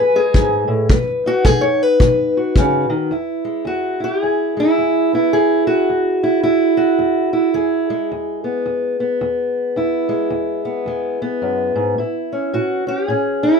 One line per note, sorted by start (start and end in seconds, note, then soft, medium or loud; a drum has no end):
0.00 0.31 E2 medium
0.00 0.13 G#3 soft
0.00 0.17 B4 loud
0.15 0.91 G#3 medium
0.15 0.71 G#4 loud
0.34 0.67 G#2 medium
0.34 kick medium
0.68 0.90 A2 medium
0.90 1.41 B2 medium
0.90 1.61 B4 soft
0.90 kick medium
1.26 3.10 D#4 medium
1.26 1.45 F#4 loud
1.45 1.97 B2 medium
1.45 1.63 G#4 medium
1.45 kick medium
1.61 1.83 C#5 loud
1.83 2.93 B4 loud
2.00 2.52 B2 medium
2.00 kick medium
2.37 3.10 F#4 medium
2.56 2.89 C#3 medium
2.56 kick medium
2.90 3.11 D#3 medium
3.11 3.62 E2 medium
3.11 4.00 E4 soft
3.45 4.56 G#3 soft
3.65 4.17 E2 medium
3.65 4.03 F#4 medium
4.00 4.59 E4 soft
4.00 4.23 G4 loud
4.23 4.73 E2 medium
4.23 5.11 G#4 loud
4.57 7.90 G#3 soft
4.57 5.13 E4 medium
4.78 5.28 E2 medium
5.13 5.33 B3 soft
5.13 5.88 E4 medium
5.33 5.84 E2 medium
5.33 5.66 G#4 loud
5.67 6.76 F#4 medium
5.90 6.40 E2 medium
6.23 6.42 E4 medium
6.43 6.95 E2 medium
6.43 7.32 E4 medium
6.77 7.54 F#4 medium
6.99 7.49 E2 medium
7.33 8.09 E4 medium
7.54 8.05 E2 medium
7.54 8.43 G#4 medium
7.90 10.08 G#3 medium
8.12 8.61 E2 medium
8.44 8.98 B3 soft
8.66 9.16 E2 medium
9.00 10.64 B3 soft
9.21 9.71 E2 medium
9.76 10.26 E2 medium
9.76 11.99 E4 medium
10.09 10.86 G#3 medium
10.30 10.81 E2 medium
10.65 11.20 B3 medium
10.86 11.37 E2 medium
10.86 11.97 G#3 medium
11.22 11.98 B3 medium
11.42 11.75 F#2 medium
11.75 11.97 G#2 medium
11.98 12.48 A2 medium
11.98 12.54 E4 soft
12.32 12.86 C#4 medium
12.53 13.04 A2 medium
12.53 12.88 F#4 medium
12.87 13.08 C#4 soft
12.87 13.08 G4 medium
13.08 13.59 A2 medium
13.08 13.60 C#4 medium
13.08 13.60 G#4 medium
13.43 13.60 E4 medium